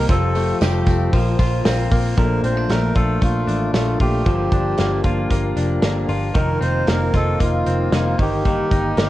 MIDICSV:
0, 0, Header, 1, 7, 480
1, 0, Start_track
1, 0, Key_signature, -2, "major"
1, 0, Tempo, 522648
1, 82, Time_signature, 4, 2, 24, 8
1, 8353, End_track
2, 0, Start_track
2, 0, Title_t, "Melodica"
2, 0, Program_c, 0, 22
2, 94, Note_on_c, 0, 69, 84
2, 533, Note_off_c, 0, 69, 0
2, 1997, Note_on_c, 0, 70, 100
2, 2218, Note_off_c, 0, 70, 0
2, 2243, Note_on_c, 0, 72, 87
2, 2476, Note_on_c, 0, 70, 99
2, 2485, Note_off_c, 0, 72, 0
2, 2714, Note_on_c, 0, 69, 84
2, 2722, Note_off_c, 0, 70, 0
2, 2960, Note_off_c, 0, 69, 0
2, 2973, Note_on_c, 0, 65, 85
2, 3409, Note_off_c, 0, 65, 0
2, 3442, Note_on_c, 0, 65, 81
2, 3660, Note_off_c, 0, 65, 0
2, 3684, Note_on_c, 0, 67, 81
2, 4602, Note_off_c, 0, 67, 0
2, 5837, Note_on_c, 0, 70, 101
2, 6060, Note_off_c, 0, 70, 0
2, 6083, Note_on_c, 0, 72, 107
2, 6322, Note_on_c, 0, 70, 102
2, 6326, Note_off_c, 0, 72, 0
2, 6566, Note_off_c, 0, 70, 0
2, 6574, Note_on_c, 0, 69, 92
2, 6790, Note_off_c, 0, 69, 0
2, 6823, Note_on_c, 0, 65, 81
2, 7285, Note_off_c, 0, 65, 0
2, 7299, Note_on_c, 0, 65, 79
2, 7513, Note_off_c, 0, 65, 0
2, 7544, Note_on_c, 0, 67, 82
2, 8353, Note_off_c, 0, 67, 0
2, 8353, End_track
3, 0, Start_track
3, 0, Title_t, "Transistor combo organ"
3, 0, Program_c, 1, 18
3, 82, Note_on_c, 1, 65, 67
3, 82, Note_on_c, 1, 67, 62
3, 85, Note_on_c, 1, 69, 72
3, 1018, Note_off_c, 1, 65, 0
3, 1018, Note_off_c, 1, 67, 0
3, 1020, Note_off_c, 1, 69, 0
3, 1031, Note_on_c, 1, 65, 70
3, 1035, Note_on_c, 1, 70, 65
3, 1036, Note_on_c, 1, 72, 84
3, 1972, Note_off_c, 1, 65, 0
3, 1974, Note_off_c, 1, 70, 0
3, 1974, Note_off_c, 1, 72, 0
3, 1990, Note_on_c, 1, 62, 56
3, 1992, Note_on_c, 1, 69, 58
3, 2000, Note_on_c, 1, 58, 72
3, 3873, Note_off_c, 1, 62, 0
3, 3875, Note_off_c, 1, 69, 0
3, 3878, Note_off_c, 1, 58, 0
3, 3902, Note_on_c, 1, 65, 60
3, 3903, Note_on_c, 1, 67, 59
3, 3909, Note_on_c, 1, 70, 60
3, 5793, Note_off_c, 1, 65, 0
3, 5793, Note_off_c, 1, 67, 0
3, 5796, Note_off_c, 1, 70, 0
3, 5831, Note_on_c, 1, 63, 58
3, 5834, Note_on_c, 1, 65, 56
3, 5840, Note_on_c, 1, 70, 62
3, 7483, Note_off_c, 1, 63, 0
3, 7485, Note_off_c, 1, 65, 0
3, 7488, Note_off_c, 1, 70, 0
3, 7515, Note_on_c, 1, 63, 61
3, 7519, Note_on_c, 1, 67, 52
3, 7521, Note_on_c, 1, 70, 69
3, 8353, Note_off_c, 1, 63, 0
3, 8353, Note_off_c, 1, 67, 0
3, 8353, Note_off_c, 1, 70, 0
3, 8353, End_track
4, 0, Start_track
4, 0, Title_t, "Clean electric guitar"
4, 0, Program_c, 2, 27
4, 83, Note_on_c, 2, 53, 78
4, 88, Note_on_c, 2, 55, 81
4, 91, Note_on_c, 2, 60, 77
4, 92, Note_on_c, 2, 65, 83
4, 93, Note_on_c, 2, 69, 97
4, 311, Note_off_c, 2, 69, 0
4, 319, Note_off_c, 2, 65, 0
4, 321, Note_off_c, 2, 53, 0
4, 322, Note_on_c, 2, 69, 52
4, 323, Note_off_c, 2, 55, 0
4, 325, Note_off_c, 2, 60, 0
4, 330, Note_on_c, 2, 65, 54
4, 338, Note_on_c, 2, 60, 44
4, 558, Note_off_c, 2, 60, 0
4, 559, Note_on_c, 2, 53, 82
4, 560, Note_off_c, 2, 69, 0
4, 562, Note_off_c, 2, 65, 0
4, 567, Note_on_c, 2, 55, 70
4, 569, Note_on_c, 2, 60, 75
4, 572, Note_on_c, 2, 69, 80
4, 573, Note_on_c, 2, 65, 92
4, 1039, Note_off_c, 2, 55, 0
4, 1042, Note_off_c, 2, 53, 0
4, 1042, Note_off_c, 2, 60, 0
4, 1042, Note_on_c, 2, 53, 73
4, 1043, Note_off_c, 2, 69, 0
4, 1047, Note_on_c, 2, 58, 73
4, 1055, Note_off_c, 2, 65, 0
4, 1058, Note_on_c, 2, 60, 79
4, 1062, Note_on_c, 2, 65, 73
4, 1271, Note_off_c, 2, 65, 0
4, 1279, Note_off_c, 2, 53, 0
4, 1281, Note_off_c, 2, 58, 0
4, 1282, Note_on_c, 2, 65, 61
4, 1283, Note_off_c, 2, 60, 0
4, 1294, Note_on_c, 2, 60, 55
4, 1298, Note_on_c, 2, 58, 51
4, 1515, Note_off_c, 2, 58, 0
4, 1518, Note_off_c, 2, 65, 0
4, 1520, Note_off_c, 2, 60, 0
4, 1521, Note_on_c, 2, 46, 88
4, 1524, Note_on_c, 2, 53, 93
4, 1526, Note_on_c, 2, 58, 96
4, 1531, Note_on_c, 2, 60, 95
4, 1533, Note_on_c, 2, 65, 96
4, 1755, Note_off_c, 2, 65, 0
4, 1758, Note_off_c, 2, 46, 0
4, 1759, Note_off_c, 2, 53, 0
4, 1760, Note_off_c, 2, 58, 0
4, 1762, Note_off_c, 2, 60, 0
4, 1766, Note_on_c, 2, 65, 57
4, 1777, Note_on_c, 2, 60, 51
4, 1784, Note_on_c, 2, 58, 47
4, 2000, Note_off_c, 2, 65, 0
4, 2003, Note_off_c, 2, 58, 0
4, 2003, Note_on_c, 2, 46, 79
4, 2005, Note_off_c, 2, 60, 0
4, 2006, Note_on_c, 2, 53, 79
4, 2007, Note_on_c, 2, 57, 82
4, 2014, Note_on_c, 2, 62, 84
4, 2224, Note_off_c, 2, 62, 0
4, 2235, Note_on_c, 2, 62, 55
4, 2236, Note_off_c, 2, 57, 0
4, 2238, Note_off_c, 2, 46, 0
4, 2239, Note_off_c, 2, 53, 0
4, 2248, Note_on_c, 2, 57, 49
4, 2257, Note_on_c, 2, 53, 42
4, 2474, Note_off_c, 2, 53, 0
4, 2474, Note_off_c, 2, 62, 0
4, 2476, Note_on_c, 2, 46, 55
4, 2480, Note_off_c, 2, 57, 0
4, 2485, Note_on_c, 2, 53, 58
4, 2490, Note_on_c, 2, 57, 60
4, 2497, Note_on_c, 2, 62, 59
4, 2701, Note_off_c, 2, 62, 0
4, 2711, Note_off_c, 2, 57, 0
4, 2712, Note_on_c, 2, 62, 50
4, 2714, Note_off_c, 2, 46, 0
4, 2719, Note_off_c, 2, 53, 0
4, 2722, Note_on_c, 2, 57, 43
4, 2729, Note_on_c, 2, 53, 32
4, 3433, Note_on_c, 2, 46, 57
4, 3434, Note_off_c, 2, 57, 0
4, 3436, Note_off_c, 2, 53, 0
4, 3440, Note_on_c, 2, 53, 57
4, 3445, Note_off_c, 2, 62, 0
4, 3445, Note_on_c, 2, 57, 66
4, 3449, Note_on_c, 2, 62, 64
4, 3665, Note_off_c, 2, 62, 0
4, 3673, Note_off_c, 2, 46, 0
4, 3674, Note_off_c, 2, 57, 0
4, 3676, Note_off_c, 2, 53, 0
4, 3676, Note_on_c, 2, 62, 46
4, 3685, Note_on_c, 2, 57, 46
4, 3698, Note_on_c, 2, 53, 39
4, 3904, Note_off_c, 2, 53, 0
4, 3908, Note_on_c, 2, 43, 80
4, 3911, Note_off_c, 2, 62, 0
4, 3913, Note_on_c, 2, 50, 78
4, 3915, Note_on_c, 2, 53, 82
4, 3916, Note_off_c, 2, 57, 0
4, 3920, Note_on_c, 2, 58, 74
4, 3922, Note_on_c, 2, 62, 82
4, 4143, Note_off_c, 2, 62, 0
4, 4150, Note_off_c, 2, 43, 0
4, 4150, Note_off_c, 2, 58, 0
4, 4153, Note_off_c, 2, 50, 0
4, 4154, Note_off_c, 2, 53, 0
4, 4154, Note_on_c, 2, 62, 61
4, 4161, Note_on_c, 2, 58, 52
4, 4169, Note_on_c, 2, 53, 49
4, 4385, Note_off_c, 2, 53, 0
4, 4391, Note_on_c, 2, 50, 53
4, 4393, Note_off_c, 2, 58, 0
4, 4393, Note_off_c, 2, 62, 0
4, 4396, Note_on_c, 2, 53, 60
4, 4404, Note_on_c, 2, 58, 59
4, 4407, Note_on_c, 2, 62, 69
4, 4615, Note_off_c, 2, 62, 0
4, 4622, Note_off_c, 2, 58, 0
4, 4626, Note_on_c, 2, 62, 48
4, 4632, Note_off_c, 2, 50, 0
4, 4633, Note_on_c, 2, 58, 51
4, 4635, Note_off_c, 2, 53, 0
4, 4645, Note_on_c, 2, 53, 44
4, 5349, Note_on_c, 2, 50, 67
4, 5350, Note_off_c, 2, 62, 0
4, 5351, Note_off_c, 2, 53, 0
4, 5355, Note_on_c, 2, 53, 70
4, 5359, Note_off_c, 2, 58, 0
4, 5363, Note_on_c, 2, 58, 63
4, 5366, Note_on_c, 2, 62, 68
4, 5583, Note_off_c, 2, 62, 0
4, 5592, Note_off_c, 2, 50, 0
4, 5594, Note_on_c, 2, 62, 61
4, 5595, Note_off_c, 2, 53, 0
4, 5595, Note_off_c, 2, 58, 0
4, 5606, Note_on_c, 2, 58, 42
4, 5615, Note_on_c, 2, 53, 44
4, 5832, Note_off_c, 2, 58, 0
4, 5833, Note_on_c, 2, 41, 70
4, 5834, Note_on_c, 2, 48, 69
4, 5835, Note_off_c, 2, 62, 0
4, 5837, Note_off_c, 2, 53, 0
4, 5841, Note_on_c, 2, 51, 82
4, 5842, Note_on_c, 2, 63, 82
4, 5843, Note_on_c, 2, 58, 81
4, 6069, Note_off_c, 2, 63, 0
4, 6074, Note_off_c, 2, 41, 0
4, 6075, Note_off_c, 2, 48, 0
4, 6078, Note_off_c, 2, 51, 0
4, 6079, Note_off_c, 2, 58, 0
4, 6080, Note_on_c, 2, 63, 58
4, 6090, Note_on_c, 2, 58, 47
4, 6097, Note_on_c, 2, 51, 45
4, 6313, Note_off_c, 2, 51, 0
4, 6313, Note_on_c, 2, 48, 54
4, 6318, Note_off_c, 2, 58, 0
4, 6318, Note_off_c, 2, 63, 0
4, 6324, Note_on_c, 2, 51, 50
4, 6329, Note_on_c, 2, 58, 60
4, 6330, Note_on_c, 2, 63, 60
4, 6547, Note_off_c, 2, 63, 0
4, 6554, Note_off_c, 2, 58, 0
4, 6555, Note_off_c, 2, 48, 0
4, 6558, Note_on_c, 2, 63, 44
4, 6560, Note_off_c, 2, 51, 0
4, 6565, Note_on_c, 2, 58, 43
4, 6574, Note_on_c, 2, 51, 35
4, 7275, Note_on_c, 2, 48, 58
4, 7281, Note_off_c, 2, 51, 0
4, 7284, Note_off_c, 2, 58, 0
4, 7285, Note_on_c, 2, 51, 56
4, 7287, Note_on_c, 2, 58, 65
4, 7289, Note_off_c, 2, 63, 0
4, 7292, Note_on_c, 2, 63, 70
4, 7505, Note_off_c, 2, 63, 0
4, 7516, Note_off_c, 2, 58, 0
4, 7516, Note_on_c, 2, 63, 48
4, 7517, Note_off_c, 2, 48, 0
4, 7522, Note_off_c, 2, 51, 0
4, 7536, Note_on_c, 2, 55, 39
4, 7755, Note_off_c, 2, 55, 0
4, 7757, Note_on_c, 2, 43, 76
4, 7758, Note_off_c, 2, 63, 0
4, 7763, Note_on_c, 2, 51, 81
4, 7765, Note_on_c, 2, 58, 83
4, 7766, Note_on_c, 2, 55, 81
4, 7770, Note_on_c, 2, 63, 86
4, 7982, Note_off_c, 2, 63, 0
4, 7993, Note_on_c, 2, 63, 51
4, 7996, Note_off_c, 2, 58, 0
4, 7999, Note_off_c, 2, 43, 0
4, 8000, Note_off_c, 2, 55, 0
4, 8002, Note_off_c, 2, 51, 0
4, 8007, Note_on_c, 2, 58, 47
4, 8011, Note_on_c, 2, 55, 43
4, 8235, Note_off_c, 2, 55, 0
4, 8236, Note_off_c, 2, 58, 0
4, 8237, Note_on_c, 2, 51, 56
4, 8238, Note_off_c, 2, 63, 0
4, 8246, Note_on_c, 2, 55, 61
4, 8247, Note_on_c, 2, 58, 73
4, 8255, Note_on_c, 2, 63, 63
4, 8353, Note_off_c, 2, 51, 0
4, 8353, Note_off_c, 2, 55, 0
4, 8353, Note_off_c, 2, 58, 0
4, 8353, Note_off_c, 2, 63, 0
4, 8353, End_track
5, 0, Start_track
5, 0, Title_t, "Clean electric guitar"
5, 0, Program_c, 3, 27
5, 0, Note_on_c, 3, 58, 62
5, 0, Note_on_c, 3, 60, 52
5, 0, Note_on_c, 3, 67, 69
5, 83, Note_on_c, 3, 53, 93
5, 129, Note_off_c, 3, 67, 0
5, 133, Note_off_c, 3, 58, 0
5, 328, Note_on_c, 3, 57, 63
5, 572, Note_on_c, 3, 67, 73
5, 801, Note_off_c, 3, 60, 0
5, 805, Note_on_c, 3, 60, 55
5, 1038, Note_off_c, 3, 53, 0
5, 1042, Note_on_c, 3, 53, 75
5, 1088, Note_off_c, 3, 60, 0
5, 1089, Note_off_c, 3, 57, 0
5, 1092, Note_off_c, 3, 67, 0
5, 1275, Note_on_c, 3, 65, 64
5, 1516, Note_on_c, 3, 60, 61
5, 1757, Note_on_c, 3, 58, 58
5, 1996, Note_off_c, 3, 53, 0
5, 2000, Note_on_c, 3, 53, 81
5, 2042, Note_off_c, 3, 60, 0
5, 2237, Note_on_c, 3, 60, 58
5, 2265, Note_off_c, 3, 58, 0
5, 2357, Note_off_c, 3, 60, 0
5, 2357, Note_on_c, 3, 62, 51
5, 2479, Note_on_c, 3, 57, 63
5, 2711, Note_off_c, 3, 65, 0
5, 2715, Note_on_c, 3, 65, 64
5, 2940, Note_off_c, 3, 57, 0
5, 2951, Note_on_c, 3, 57, 61
5, 3180, Note_off_c, 3, 62, 0
5, 3191, Note_on_c, 3, 62, 57
5, 3421, Note_off_c, 3, 57, 0
5, 3433, Note_on_c, 3, 57, 52
5, 3679, Note_off_c, 3, 65, 0
5, 3682, Note_on_c, 3, 65, 58
5, 3913, Note_off_c, 3, 53, 0
5, 3917, Note_on_c, 3, 53, 78
5, 3960, Note_off_c, 3, 57, 0
5, 4160, Note_off_c, 3, 62, 0
5, 4164, Note_on_c, 3, 62, 51
5, 4401, Note_on_c, 3, 58, 64
5, 4636, Note_off_c, 3, 65, 0
5, 4640, Note_on_c, 3, 65, 57
5, 4876, Note_off_c, 3, 58, 0
5, 4879, Note_on_c, 3, 58, 63
5, 5101, Note_off_c, 3, 62, 0
5, 5112, Note_on_c, 3, 62, 52
5, 5343, Note_off_c, 3, 58, 0
5, 5347, Note_on_c, 3, 58, 54
5, 5590, Note_off_c, 3, 65, 0
5, 5594, Note_on_c, 3, 65, 62
5, 5823, Note_off_c, 3, 53, 0
5, 5827, Note_on_c, 3, 51, 87
5, 5882, Note_off_c, 3, 62, 0
5, 5882, Note_off_c, 3, 65, 0
5, 6069, Note_on_c, 3, 60, 60
5, 6097, Note_off_c, 3, 58, 0
5, 6315, Note_on_c, 3, 58, 65
5, 6559, Note_on_c, 3, 65, 66
5, 6788, Note_off_c, 3, 58, 0
5, 6792, Note_on_c, 3, 58, 70
5, 7030, Note_off_c, 3, 60, 0
5, 7041, Note_on_c, 3, 60, 56
5, 7275, Note_off_c, 3, 58, 0
5, 7279, Note_on_c, 3, 58, 54
5, 7517, Note_off_c, 3, 51, 0
5, 7520, Note_on_c, 3, 51, 80
5, 7569, Note_off_c, 3, 60, 0
5, 7569, Note_off_c, 3, 65, 0
5, 7752, Note_off_c, 3, 51, 0
5, 7764, Note_on_c, 3, 51, 76
5, 8004, Note_on_c, 3, 63, 51
5, 8240, Note_off_c, 3, 58, 0
5, 8243, Note_on_c, 3, 58, 52
5, 8353, Note_off_c, 3, 51, 0
5, 8353, Note_off_c, 3, 58, 0
5, 8353, Note_off_c, 3, 63, 0
5, 8353, End_track
6, 0, Start_track
6, 0, Title_t, "Picked electric bass"
6, 0, Program_c, 4, 34
6, 85, Note_on_c, 4, 29, 99
6, 475, Note_off_c, 4, 29, 0
6, 565, Note_on_c, 4, 29, 98
6, 759, Note_off_c, 4, 29, 0
6, 796, Note_on_c, 4, 29, 101
6, 993, Note_off_c, 4, 29, 0
6, 1041, Note_on_c, 4, 34, 87
6, 1235, Note_off_c, 4, 34, 0
6, 1276, Note_on_c, 4, 34, 88
6, 1472, Note_off_c, 4, 34, 0
6, 1522, Note_on_c, 4, 34, 93
6, 1716, Note_off_c, 4, 34, 0
6, 1760, Note_on_c, 4, 34, 100
6, 1954, Note_off_c, 4, 34, 0
6, 1998, Note_on_c, 4, 34, 90
6, 2193, Note_off_c, 4, 34, 0
6, 2233, Note_on_c, 4, 34, 91
6, 2429, Note_off_c, 4, 34, 0
6, 2473, Note_on_c, 4, 34, 80
6, 2670, Note_off_c, 4, 34, 0
6, 2716, Note_on_c, 4, 34, 83
6, 2911, Note_off_c, 4, 34, 0
6, 2956, Note_on_c, 4, 34, 94
6, 3151, Note_off_c, 4, 34, 0
6, 3191, Note_on_c, 4, 33, 70
6, 3388, Note_off_c, 4, 33, 0
6, 3429, Note_on_c, 4, 34, 88
6, 3627, Note_off_c, 4, 34, 0
6, 3677, Note_on_c, 4, 34, 96
6, 3872, Note_off_c, 4, 34, 0
6, 3914, Note_on_c, 4, 31, 93
6, 4110, Note_off_c, 4, 31, 0
6, 4152, Note_on_c, 4, 31, 87
6, 4349, Note_off_c, 4, 31, 0
6, 4402, Note_on_c, 4, 31, 96
6, 4595, Note_off_c, 4, 31, 0
6, 4632, Note_on_c, 4, 31, 85
6, 4830, Note_off_c, 4, 31, 0
6, 4875, Note_on_c, 4, 31, 89
6, 5071, Note_off_c, 4, 31, 0
6, 5112, Note_on_c, 4, 29, 71
6, 5310, Note_off_c, 4, 29, 0
6, 5352, Note_on_c, 4, 31, 86
6, 5550, Note_off_c, 4, 31, 0
6, 5591, Note_on_c, 4, 31, 97
6, 5789, Note_off_c, 4, 31, 0
6, 5834, Note_on_c, 4, 29, 99
6, 6031, Note_off_c, 4, 29, 0
6, 6074, Note_on_c, 4, 29, 93
6, 6272, Note_off_c, 4, 29, 0
6, 6318, Note_on_c, 4, 29, 93
6, 6514, Note_off_c, 4, 29, 0
6, 6555, Note_on_c, 4, 29, 99
6, 6753, Note_off_c, 4, 29, 0
6, 6799, Note_on_c, 4, 29, 90
6, 6996, Note_off_c, 4, 29, 0
6, 7036, Note_on_c, 4, 29, 69
6, 7234, Note_off_c, 4, 29, 0
6, 7273, Note_on_c, 4, 29, 89
6, 7473, Note_off_c, 4, 29, 0
6, 7522, Note_on_c, 4, 31, 74
6, 7915, Note_off_c, 4, 31, 0
6, 8001, Note_on_c, 4, 31, 87
6, 8199, Note_off_c, 4, 31, 0
6, 8242, Note_on_c, 4, 31, 78
6, 8353, Note_off_c, 4, 31, 0
6, 8353, End_track
7, 0, Start_track
7, 0, Title_t, "Drums"
7, 79, Note_on_c, 9, 54, 30
7, 81, Note_on_c, 9, 46, 93
7, 82, Note_on_c, 9, 36, 115
7, 82, Note_on_c, 9, 44, 63
7, 171, Note_off_c, 9, 54, 0
7, 173, Note_off_c, 9, 44, 0
7, 173, Note_off_c, 9, 46, 0
7, 174, Note_off_c, 9, 36, 0
7, 321, Note_on_c, 9, 54, 44
7, 322, Note_on_c, 9, 44, 58
7, 324, Note_on_c, 9, 46, 75
7, 413, Note_off_c, 9, 54, 0
7, 414, Note_off_c, 9, 44, 0
7, 416, Note_off_c, 9, 46, 0
7, 560, Note_on_c, 9, 46, 82
7, 561, Note_on_c, 9, 54, 86
7, 563, Note_on_c, 9, 44, 58
7, 568, Note_on_c, 9, 38, 102
7, 652, Note_off_c, 9, 46, 0
7, 653, Note_off_c, 9, 54, 0
7, 655, Note_off_c, 9, 44, 0
7, 660, Note_off_c, 9, 38, 0
7, 793, Note_on_c, 9, 46, 79
7, 796, Note_on_c, 9, 44, 62
7, 798, Note_on_c, 9, 36, 95
7, 807, Note_on_c, 9, 54, 55
7, 885, Note_off_c, 9, 46, 0
7, 888, Note_off_c, 9, 44, 0
7, 890, Note_off_c, 9, 36, 0
7, 898, Note_off_c, 9, 54, 0
7, 1037, Note_on_c, 9, 44, 64
7, 1038, Note_on_c, 9, 36, 91
7, 1038, Note_on_c, 9, 46, 86
7, 1044, Note_on_c, 9, 54, 46
7, 1129, Note_off_c, 9, 44, 0
7, 1130, Note_off_c, 9, 36, 0
7, 1130, Note_off_c, 9, 46, 0
7, 1136, Note_off_c, 9, 54, 0
7, 1276, Note_on_c, 9, 36, 85
7, 1277, Note_on_c, 9, 44, 67
7, 1278, Note_on_c, 9, 46, 83
7, 1283, Note_on_c, 9, 54, 55
7, 1368, Note_off_c, 9, 36, 0
7, 1369, Note_off_c, 9, 44, 0
7, 1370, Note_off_c, 9, 46, 0
7, 1375, Note_off_c, 9, 54, 0
7, 1517, Note_on_c, 9, 38, 115
7, 1517, Note_on_c, 9, 44, 71
7, 1518, Note_on_c, 9, 46, 107
7, 1522, Note_on_c, 9, 54, 91
7, 1608, Note_off_c, 9, 38, 0
7, 1609, Note_off_c, 9, 44, 0
7, 1609, Note_off_c, 9, 46, 0
7, 1614, Note_off_c, 9, 54, 0
7, 1758, Note_on_c, 9, 36, 103
7, 1758, Note_on_c, 9, 44, 65
7, 1759, Note_on_c, 9, 46, 66
7, 1849, Note_off_c, 9, 44, 0
7, 1850, Note_off_c, 9, 36, 0
7, 1851, Note_off_c, 9, 46, 0
7, 1995, Note_on_c, 9, 42, 85
7, 1997, Note_on_c, 9, 36, 104
7, 2087, Note_off_c, 9, 42, 0
7, 2089, Note_off_c, 9, 36, 0
7, 2237, Note_on_c, 9, 42, 67
7, 2329, Note_off_c, 9, 42, 0
7, 2474, Note_on_c, 9, 42, 73
7, 2482, Note_on_c, 9, 38, 97
7, 2566, Note_off_c, 9, 42, 0
7, 2574, Note_off_c, 9, 38, 0
7, 2710, Note_on_c, 9, 42, 68
7, 2714, Note_on_c, 9, 36, 78
7, 2802, Note_off_c, 9, 42, 0
7, 2806, Note_off_c, 9, 36, 0
7, 2956, Note_on_c, 9, 36, 81
7, 2956, Note_on_c, 9, 42, 85
7, 3048, Note_off_c, 9, 36, 0
7, 3048, Note_off_c, 9, 42, 0
7, 3201, Note_on_c, 9, 42, 66
7, 3293, Note_off_c, 9, 42, 0
7, 3436, Note_on_c, 9, 38, 103
7, 3437, Note_on_c, 9, 42, 102
7, 3528, Note_off_c, 9, 38, 0
7, 3529, Note_off_c, 9, 42, 0
7, 3672, Note_on_c, 9, 46, 59
7, 3674, Note_on_c, 9, 36, 75
7, 3763, Note_off_c, 9, 46, 0
7, 3766, Note_off_c, 9, 36, 0
7, 3914, Note_on_c, 9, 36, 91
7, 3914, Note_on_c, 9, 42, 76
7, 4006, Note_off_c, 9, 36, 0
7, 4006, Note_off_c, 9, 42, 0
7, 4151, Note_on_c, 9, 36, 85
7, 4154, Note_on_c, 9, 42, 63
7, 4243, Note_off_c, 9, 36, 0
7, 4246, Note_off_c, 9, 42, 0
7, 4388, Note_on_c, 9, 42, 81
7, 4396, Note_on_c, 9, 38, 93
7, 4479, Note_off_c, 9, 42, 0
7, 4488, Note_off_c, 9, 38, 0
7, 4627, Note_on_c, 9, 42, 66
7, 4630, Note_on_c, 9, 36, 76
7, 4719, Note_off_c, 9, 42, 0
7, 4722, Note_off_c, 9, 36, 0
7, 4872, Note_on_c, 9, 36, 80
7, 4872, Note_on_c, 9, 42, 93
7, 4964, Note_off_c, 9, 36, 0
7, 4964, Note_off_c, 9, 42, 0
7, 5114, Note_on_c, 9, 42, 74
7, 5206, Note_off_c, 9, 42, 0
7, 5349, Note_on_c, 9, 38, 99
7, 5350, Note_on_c, 9, 42, 101
7, 5441, Note_off_c, 9, 38, 0
7, 5441, Note_off_c, 9, 42, 0
7, 5592, Note_on_c, 9, 46, 59
7, 5684, Note_off_c, 9, 46, 0
7, 5829, Note_on_c, 9, 42, 82
7, 5834, Note_on_c, 9, 36, 101
7, 5921, Note_off_c, 9, 42, 0
7, 5926, Note_off_c, 9, 36, 0
7, 6083, Note_on_c, 9, 42, 62
7, 6175, Note_off_c, 9, 42, 0
7, 6313, Note_on_c, 9, 42, 82
7, 6321, Note_on_c, 9, 38, 105
7, 6405, Note_off_c, 9, 42, 0
7, 6413, Note_off_c, 9, 38, 0
7, 6551, Note_on_c, 9, 38, 28
7, 6553, Note_on_c, 9, 42, 63
7, 6556, Note_on_c, 9, 36, 74
7, 6643, Note_off_c, 9, 38, 0
7, 6645, Note_off_c, 9, 42, 0
7, 6648, Note_off_c, 9, 36, 0
7, 6799, Note_on_c, 9, 36, 75
7, 6800, Note_on_c, 9, 42, 97
7, 6890, Note_off_c, 9, 36, 0
7, 6892, Note_off_c, 9, 42, 0
7, 7037, Note_on_c, 9, 42, 68
7, 7129, Note_off_c, 9, 42, 0
7, 7277, Note_on_c, 9, 38, 106
7, 7278, Note_on_c, 9, 42, 99
7, 7369, Note_off_c, 9, 38, 0
7, 7370, Note_off_c, 9, 42, 0
7, 7522, Note_on_c, 9, 36, 82
7, 7522, Note_on_c, 9, 46, 59
7, 7614, Note_off_c, 9, 36, 0
7, 7614, Note_off_c, 9, 46, 0
7, 7762, Note_on_c, 9, 42, 75
7, 7764, Note_on_c, 9, 36, 86
7, 7853, Note_off_c, 9, 42, 0
7, 7855, Note_off_c, 9, 36, 0
7, 8001, Note_on_c, 9, 36, 84
7, 8006, Note_on_c, 9, 42, 69
7, 8093, Note_off_c, 9, 36, 0
7, 8097, Note_off_c, 9, 42, 0
7, 8240, Note_on_c, 9, 42, 75
7, 8249, Note_on_c, 9, 38, 99
7, 8332, Note_off_c, 9, 42, 0
7, 8340, Note_off_c, 9, 38, 0
7, 8353, End_track
0, 0, End_of_file